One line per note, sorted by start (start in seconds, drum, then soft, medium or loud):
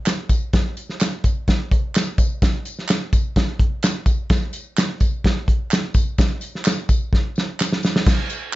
0.06 snare medium
0.06 clap medium
0.06 closed hi-hat medium
0.06 tambourine medium
0.29 kick medium
0.29 closed hi-hat medium
0.29 tambourine medium
0.53 kick loud
0.53 snare loud
0.53 closed hi-hat medium
0.53 tambourine medium
0.77 closed hi-hat medium
0.77 tambourine soft
0.89 snare soft
1.00 snare loud
1.00 clap medium
1.00 closed hi-hat medium
1.00 tambourine loud
1.24 kick medium
1.24 closed hi-hat medium
1.24 tambourine medium
1.48 kick medium
1.48 snare loud
1.48 closed hi-hat medium
1.48 tambourine soft
1.71 kick loud
1.71 closed hi-hat medium
1.71 tambourine soft
1.95 snare loud
1.95 clap medium
1.95 closed hi-hat loud
1.95 tambourine loud
2.18 kick medium
2.18 closed hi-hat medium
2.18 tambourine medium
2.42 kick loud
2.42 snare loud
2.42 closed hi-hat medium
2.42 tambourine medium
2.65 closed hi-hat medium
2.65 tambourine medium
2.79 snare soft
2.88 snare loud
2.88 clap medium
2.88 closed hi-hat medium
2.88 tambourine loud
3.13 kick medium
3.13 closed hi-hat medium
3.13 tambourine medium
3.36 kick medium
3.36 snare loud
3.36 closed hi-hat medium
3.36 tambourine soft
3.59 kick loud
3.59 closed hi-hat medium
3.83 snare loud
3.83 clap medium
3.83 closed hi-hat loud
3.83 tambourine medium
4.06 kick medium
4.06 closed hi-hat medium
4.06 tambourine medium
4.30 kick loud
4.30 snare loud
4.30 closed hi-hat medium
4.30 tambourine medium
4.53 closed hi-hat medium
4.53 tambourine medium
4.77 snare loud
4.77 clap loud
4.77 closed hi-hat medium
4.77 tambourine loud
5.00 kick medium
5.00 closed hi-hat medium
5.00 tambourine medium
5.24 kick medium
5.24 snare loud
5.24 closed hi-hat medium
5.48 kick medium
5.48 closed hi-hat medium
5.48 tambourine soft
5.71 snare loud
5.71 clap medium
5.71 closed hi-hat loud
5.71 tambourine medium
5.94 kick loud
5.94 closed hi-hat medium
5.94 tambourine medium
6.18 kick loud
6.18 snare loud
6.18 closed hi-hat medium
6.18 tambourine medium
6.41 closed hi-hat medium
6.41 tambourine medium
6.55 snare soft
6.65 snare loud
6.65 clap loud
6.65 closed hi-hat medium
6.65 tambourine loud
6.89 kick medium
6.89 closed hi-hat medium
6.89 tambourine medium
7.13 kick medium
7.13 snare medium
7.36 snare medium
7.36 tambourine soft
7.60 snare medium
7.60 clap medium
7.60 tambourine loud
7.72 snare medium
7.83 snare medium
7.83 tambourine medium
7.96 snare medium
8.07 kick loud
8.07 snare loud
8.07 crash loud
8.07 tambourine medium
8.30 closed hi-hat medium
8.30 tambourine medium